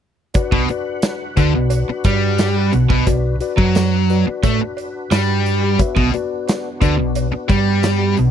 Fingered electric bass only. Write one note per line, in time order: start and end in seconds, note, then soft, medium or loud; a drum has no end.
0.52 0.68 B1 medium
1.37 1.53 D2 loud
1.56 1.87 B1 medium
1.88 muted fingered electric bass stroke soft
2.05 2.69 G2 medium
2.74 2.89 B1 medium
2.90 3.06 B1 medium
3.07 3.39 B1 medium
3.58 4.22 F#2 medium
4.27 muted fingered electric bass stroke soft
4.44 4.60 A2 medium
4.60 muted fingered electric bass stroke soft
5.11 5.75 G2 medium
5.96 6.12 B1 loud
6.82 6.98 D2 loud
6.99 7.31 B1 medium
7.35 muted fingered electric bass stroke soft
7.49 8.14 G2 medium
8.19 8.31 B1 medium